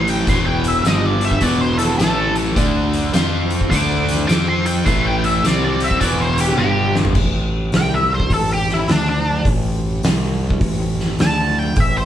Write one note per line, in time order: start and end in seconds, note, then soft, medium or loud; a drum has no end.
0.00 0.23 A1 medium
0.00 0.27 A2 medium
0.00 0.28 E3 medium
0.00 0.28 A3 loud
0.08 0.27 G5 medium
0.08 closed hi-hat medium
0.27 0.80 E1 medium
0.27 0.85 E2 medium
0.27 0.85 B2 medium
0.27 0.85 E3 loud
0.27 0.46 C6 medium
0.27 kick medium
0.27 closed hi-hat medium
0.46 0.64 G5 medium
0.64 0.87 E5 medium
0.64 closed hi-hat medium
0.85 1.38 G1 medium
0.85 1.41 G2 medium
0.85 1.41 D3 medium
0.85 1.42 G3 medium
0.85 1.06 D#5 medium
0.85 snare loud
0.85 closed hi-hat medium
1.06 1.25 D5 medium
1.21 1.43 E5 medium
1.21 closed hi-hat medium
1.31 kick medium
1.41 1.95 E1 medium
1.41 1.98 E2 medium
1.41 1.98 B2 loud
1.41 1.98 E3 medium
1.41 1.61 D5 medium
1.41 kick medium
1.41 closed hi-hat medium
1.61 1.78 C5 medium
1.79 1.97 A4 medium
1.79 snare soft
1.79 closed hi-hat medium
1.98 2.52 A1 medium
1.98 2.55 A2 medium
1.98 2.56 E3 medium
1.98 2.56 A3 medium
1.98 2.34 A4 medium
1.98 snare loud
1.98 closed hi-hat medium
2.35 closed hi-hat medium
2.56 3.10 D2 loud
2.56 3.13 D3 medium
2.56 3.14 A3 medium
2.56 3.14 D4 loud
2.56 kick loud
2.56 closed hi-hat medium
2.93 closed hi-hat medium
3.14 3.67 F2 medium
3.14 3.70 F3 medium
3.14 3.71 C4 medium
3.14 3.71 F4 medium
3.14 snare loud
3.14 closed hi-hat medium
3.50 closed hi-hat medium
3.61 kick medium
3.70 4.25 D2 medium
3.70 4.27 D3 loud
3.70 4.27 A3 medium
3.70 4.28 D4 loud
3.70 4.08 D6 medium
3.70 kick medium
3.70 closed hi-hat medium
4.09 snare soft
4.09 closed hi-hat medium
4.27 4.82 F2 medium
4.27 4.85 F3 medium
4.27 4.85 C4 loud
4.27 4.85 F4 loud
4.27 4.47 D6 medium
4.27 snare medium
4.27 closed hi-hat medium
4.49 4.67 C6 medium
4.66 4.85 G5 medium
4.66 closed hi-hat medium
4.85 5.40 A1 medium
4.85 5.42 A2 medium
4.85 5.43 E3 loud
4.85 5.44 A3 medium
4.85 5.04 C6 medium
4.85 kick loud
4.85 closed hi-hat medium
5.06 5.24 G5 medium
5.24 5.45 E5 medium
5.24 closed hi-hat medium
5.44 5.97 C2 medium
5.44 6.01 C3 medium
5.44 6.01 G3 medium
5.44 6.01 C4 medium
5.44 5.63 D5 medium
5.44 snare medium
5.44 closed hi-hat medium
5.64 5.82 D5 medium
5.80 6.00 E5 medium
5.80 closed hi-hat medium
5.91 kick medium
6.01 6.55 E1 medium
6.01 6.57 E2 medium
6.01 6.58 B2 medium
6.01 6.59 E3 medium
6.01 6.19 D5 medium
6.01 kick medium
6.01 closed hi-hat medium
6.20 6.39 C5 medium
6.38 6.58 G4 medium
6.38 closed hi-hat medium
6.49 snare soft
6.57 7.12 G1 medium
6.57 7.15 G2 medium
6.57 7.15 D3 medium
6.57 7.16 G3 medium
6.57 6.94 G4 loud
6.57 high tom medium
6.95 snare medium
7.05 floor tom medium
7.15 7.69 A1 medium
7.15 kick loud
7.15 crash loud
7.72 8.27 C2 medium
7.72 snare loud
7.72 open hi-hat soft
7.77 7.94 G5 medium
7.94 8.12 E5 medium
8.14 8.32 C5 medium
8.20 kick medium
8.30 8.84 A1 medium
8.30 8.51 A4 medium
8.30 kick medium
8.30 open hi-hat soft
8.53 8.74 G4 medium
8.69 snare soft
8.74 8.91 E4 medium
8.88 9.42 D2 medium
8.88 9.08 D4 medium
8.88 snare medium
8.88 open hi-hat soft
9.09 9.46 D4 medium
9.45 10.00 A1 medium
9.45 kick loud
9.45 open hi-hat medium
10.03 10.57 C2 medium
10.03 snare loud
10.03 open hi-hat medium
10.50 kick medium
10.61 11.15 A1 medium
10.61 kick medium
10.61 open hi-hat medium
11.00 snare soft
11.19 11.73 D2 medium
11.19 11.57 A5 medium
11.19 snare loud
11.19 open hi-hat medium
11.59 11.80 G5 medium
11.76 12.05 A1 medium
11.76 kick loud
11.76 open hi-hat medium
11.80 11.97 E5 medium
11.97 12.05 C5 medium